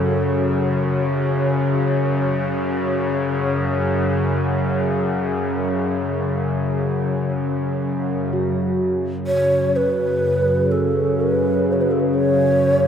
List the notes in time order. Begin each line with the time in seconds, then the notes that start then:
Already playing: F#2 C#3 F#4 A4 C#5 G#5
1.96 F#5
8.33 F#2 C#3 F#4
9.27 C#5
9.76 B4
10.71 A4
11.21 B4
11.72 C#5
11.82 B4
11.91 A4
12.00 B4
12.15 C#5